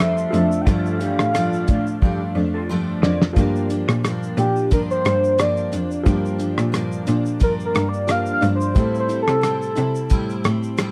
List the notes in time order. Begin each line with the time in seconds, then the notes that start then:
Already playing: F2 G2 F3 A3 D4 A4 E5
0.00 F3 A3 D4 A4 C5, cross-stick
0.18 shaker
0.30 F2 F3 A3 D4, closed hi-hat, shaker
0.36 F3 A4
0.52 shaker
0.61 F4 G5
0.66 G2 F3 A3 D4 F5, kick, closed hi-hat, shaker
0.86 shaker
1.00 E3 A3 D4 G4, closed hi-hat, shaker
1.05 F3
1.19 A2, cross-stick, shaker
1.33 G2 F3 D4 F4, cross-stick, closed hi-hat, shaker
1.37 A3 D4
1.53 shaker
1.67 A2 D4 F4, kick, closed hi-hat, shaker
1.71 F3 A3
1.87 shaker
2.02 G2 F3 A3 D4 G4, kick
2.35 F2 A3 D4
2.39 F3
2.54 F4 A4
2.69 G2 F3 A3 D4
3.02 F2 A3 D4 A#4 D5, snare
3.06 F3
3.22 snare
3.33 G2 F3 A#3 D4, kick, closed hi-hat, shaker
3.38 F3 A#3 D4 G4
3.56 shaker
3.70 A#3 D4, closed hi-hat, shaker
3.74 F3
3.88 A#2, cross-stick, shaker
4.04 G2 F3 A#3 D4, cross-stick, closed hi-hat, shaker
4.23 shaker
4.37 A#2 F3 A#3 D4 G4, closed hi-hat, shaker
4.56 shaker
4.71 G2 F3 A#3 D4 A#4, kick, closed hi-hat, shaker
4.91 C5, shaker
5.05 G2 F3 A#3 D4, cross-stick, closed hi-hat, shaker
5.24 shaker
5.38 G2 F3 A#3 D4 D5, cross-stick, closed hi-hat, shaker
5.57 shaker
5.72 F2 A#3 D4, closed hi-hat, shaker
5.76 F3
5.91 shaker
6.03 G2 F3 A#3 D4, kick, closed hi-hat, shaker
6.08 A#3 D4 G4
6.25 shaker
6.38 F3 A#3 D4, closed hi-hat, shaker
6.58 A#2, cross-stick, shaker
6.72 G2 F3 A#3 D4, cross-stick, closed hi-hat, shaker
6.92 shaker
7.07 A#2 F3 A#3 D4, closed hi-hat, shaker
7.26 shaker
7.40 G2 F3 A#3 D4 A#4, kick, closed hi-hat, shaker
7.60 shaker
7.65 A#4
7.74 G2 F3 A#3 D4, cross-stick, closed hi-hat, shaker
7.88 D5
7.94 shaker
8.07 G2 F3 A#3 D4 G4 F5, cross-stick, closed hi-hat, shaker
8.26 shaker
8.33 F5
8.41 G2 F3 A#3 D4, closed hi-hat, shaker
8.55 C5
8.61 shaker
8.74 A2 G3 C4 E4, kick, closed hi-hat, shaker
8.78 E4 A4
8.95 shaker
9.00 C5
9.08 G3 C4 E4, closed hi-hat, shaker
9.23 A4
9.28 C3, cross-stick, shaker
9.41 A2 G3 C4, cross-stick, closed hi-hat, shaker
9.46 E4
9.62 shaker
9.75 C3 C4 E4, closed hi-hat, shaker
9.80 G3
9.95 shaker
10.10 A2 G3 C4 E4, kick, closed hi-hat, shaker
10.30 shaker
10.44 A2 G3 C4 E4, cross-stick, closed hi-hat, shaker
10.63 shaker
10.77 A2 G3 C4, cross-stick, closed hi-hat, shaker
10.82 E4